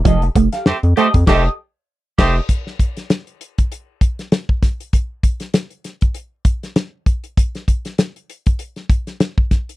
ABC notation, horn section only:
X:1
M:4/4
L:1/16
Q:"Swing 16ths" 1/4=98
K:F
V:1 name="Horn section"
z4 [A,CGc] z [A,CGc] z [A,CGc]2 z4 [A,CGc]2 | z16 | z16 | z16 |]